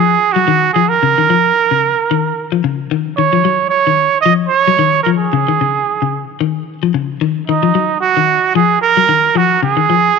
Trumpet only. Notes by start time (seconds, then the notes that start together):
Already playing: G#4
0.33 F#4
0.74 G#4
0.89 A#4
3.17 C#5
3.69 C#5
4.21 D#5
4.48 C#5
5.03 A#4
5.17 G#4
7.47 D#4
8.01 F#4
8.55 G#4
8.82 A#4
9.37 F#4
9.63 G#4